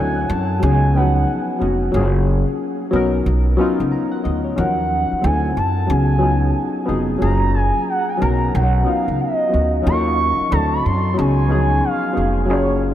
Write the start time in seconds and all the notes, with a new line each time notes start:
Already playing: D2 F#3 C4 D4 E4 G#5
0.00 A4
0.28 F#2 A5
0.60 C#2 F#3 B3 C#4 D#4 G#5
0.64 G#4
0.94 F3 B3 C#4 D#4 B4 F#5
1.00 F#3
1.59 F1 F#3 B3 C#4 D#4 F#4
1.92 F#1 F#3 A#3 C#4 F4
1.96 G#4
2.48 muted upright bass stroke
2.91 B1 F#3 B3 C#4 D#4
2.96 A#4
3.26 B1
3.57 F#3 B3 C#4 D#4
3.61 F4
3.80 C#2
3.92 A#5
4.12 F#5
4.24 D2 D#5
4.45 C#5
4.55 D#2 F3 C#4 D#4 F#5
4.59 F#3 A#4
5.12 muted upright bass stroke
5.21 D2 F#3 C4 D4 E4 G#5
5.26 A4
5.57 F#2 A5
5.87 C#2 F#3 B3 C#4 D#4 G#5
5.91 G#4
6.19 F#3 B3 C#4 D#4
6.23 F4
6.85 F1 F#3 B3 C#4 D#4 G#4
7.18 F#1 F#3 A#3 C#4 F4 A#5
7.22 G#4
7.54 G#5
7.76 muted upright bass stroke
7.88 F#5
8.09 G#5
8.18 F#3 B3 C#4 D#4 A#5
8.22 B1 A#4
8.54 B1 F#5
8.83 F#3 B3 C#4 D#4 F5
8.88 F4
9.08 C#2
9.21 D#5
9.49 F#3 B3 C#4 D#4
9.53 D2 F#4
9.82 F#3 C#4 D#4 F4
9.87 D#2 A4 C#6
9.93 A#4
10.40 muted upright bass stroke
10.49 D2 F3 C4 D4 E4 A5
10.53 F#3 A4
10.73 B5
10.85 F#2 C6
11.14 F#3 B3 C#4 D#4 G#5
11.19 C#2 G#4
11.47 F3 B3 C#4 D#4
11.51 F#3 G#4
11.84 F5
12.12 F#3 B3 C#4 D#4
12.17 F1 G#4
12.46 F#3 A#3 C#4 F4
12.50 F#1 G#4 C#5